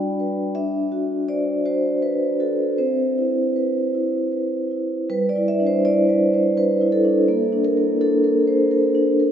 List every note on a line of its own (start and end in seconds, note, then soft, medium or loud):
0.00 0.52 G3 medium
0.00 0.55 D4 soft
0.00 0.58 F#4 soft
0.00 0.56 D5 medium
0.00 0.58 G5 medium
0.20 0.56 B4 soft
0.55 2.74 D4 medium
0.55 1.28 E5 medium
0.92 1.50 F#4 soft
1.28 1.65 C5 soft
1.28 1.65 D5 medium
1.65 2.25 F#4 soft
1.65 2.01 C5 medium
2.02 2.40 B4 medium
2.02 2.63 C5 soft
2.40 2.78 F#4 soft
2.40 2.78 A4 medium
2.78 5.06 C4 medium
2.78 4.71 C5 medium
3.18 3.79 E4 soft
3.56 4.17 B4 soft
3.95 4.56 E4 soft
4.32 4.94 B4 soft
4.71 5.09 E4 soft
5.10 7.25 G3 medium
5.10 5.28 B4 medium
5.29 5.48 D5 medium
5.36 5.75 E4 medium
5.48 5.66 E5 medium
5.60 5.99 D4 medium
5.67 5.85 C5 medium
5.85 6.24 E4 medium
5.85 6.57 D5 medium
6.09 6.47 B4 medium
6.34 6.57 C5 medium
6.58 6.93 B4 medium
6.81 7.19 E4 medium
6.92 7.65 A4 medium
7.05 7.29 D4 medium
7.28 9.32 A#3 medium
7.52 7.91 D4 medium
7.65 7.76 A#4 medium
7.77 8.15 A#4 medium
8.01 8.39 D4 medium
8.01 9.08 A4 medium
8.24 8.62 A#4 medium
8.47 8.71 C5 medium
8.71 9.10 A#4 medium
8.95 9.32 D4 medium
9.20 9.32 A#4 medium